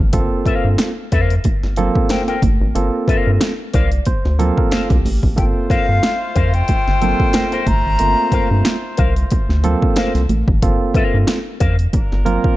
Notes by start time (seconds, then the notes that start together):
0.00 G#1
0.13 G1 A3 C4 F4 A4, kick, closed hi-hat, muted conga
0.20 A#3
0.46 G2 A#4 C5 F5, kick, closed hi-hat
0.64 G2
0.78 snare, closed hi-hat, high conga
1.12 F2 A#4 C5 F5, kick, closed hi-hat
1.30 closed hi-hat
1.44 G1, kick, closed hi-hat, muted conga
1.63 G1, snare
1.76 A#3 C4 F4 A4, closed hi-hat, muted conga, low conga
1.95 kick
2.09 A#4 C5 G5, snare, closed hi-hat, high conga
2.28 A#4 C5 G5, snare, closed hi-hat
2.42 G1, kick, closed hi-hat, high conga
2.61 G#1
2.75 G1 A#3 C4 F4 A4, closed hi-hat, muted conga
3.08 G2 A#4 C5 F5, kick, closed hi-hat
3.27 G2
3.41 snare, closed hi-hat, high conga
3.73 C2 A#4 C5 D5 F5, kick, closed hi-hat
3.92 closed hi-hat
4.05 D2 C5, kick, closed hi-hat, muted conga
4.25 D2, snare
4.39 A#3 C4 F4 A4 A#4, closed hi-hat, muted conga, low conga
4.57 A#4, kick
4.71 A4 A#4 C5 F5, snare, closed hi-hat, high conga
4.89 C2 G4, kick, snare, closed hi-hat
5.05 A1, open hi-hat, high conga
5.23 G#1, kick
5.36 G1 A3 A#3 C4 F4 A4 C5 G5, kick, closed hi-hat, muted conga
5.70 G2 A#4 C5 F5, kick, closed hi-hat
5.89 G2
6.03 snare, closed hi-hat, high conga
6.35 F2 A#4 C5 F5, kick, closed hi-hat
6.54 G5, closed hi-hat
6.68 G1, kick, closed hi-hat, muted conga
6.88 G1, snare
7.01 A#3 C4 F4 A4, closed hi-hat, muted conga, low conga
7.20 kick
7.33 A#4 C5 G5, snare, closed hi-hat, high conga
7.52 A#4 C5 G5, snare, closed hi-hat
7.67 G1 A#5, kick, closed hi-hat, high conga
7.86 G#1
7.99 G1 A3 A#3 C4 F4, closed hi-hat, muted conga
8.32 G2 A#4 C5 F5, kick, closed hi-hat
8.51 G2
8.65 snare, closed hi-hat, high conga
8.97 C2 A#4 C5 F5, kick, closed hi-hat
9.16 closed hi-hat
9.30 D2, kick, closed hi-hat, muted conga
9.49 D2, snare
9.64 A#3 C4 F4 A4, closed hi-hat, muted conga, low conga
9.82 kick
9.96 A#4 C5 F5, snare, closed hi-hat, high conga
10.15 C2, snare, closed hi-hat
10.29 A1, closed hi-hat, high conga
10.47 G#1, kick
10.62 G1 A#3 C4 F4 A4, kick, closed hi-hat
10.94 G2 A#4 C5 F5, kick, closed hi-hat
11.14 G2
11.27 snare, closed hi-hat, high conga
11.60 F2 A#4 C5 F5, kick, closed hi-hat
11.79 closed hi-hat
11.93 G1 F3 D4 A#4, kick, closed hi-hat, muted conga
12.12 G1, snare
12.25 A#3 C4 F4 A#4, closed hi-hat, muted conga, low conga
12.44 kick